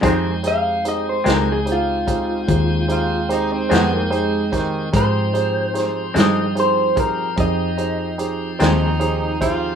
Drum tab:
HH |xxxxxxxxxxxx|xxxxxxxxxxxx|
SD |---o-----o-o|--oo-----o--|
BD |o----oo----o|o----oo----o|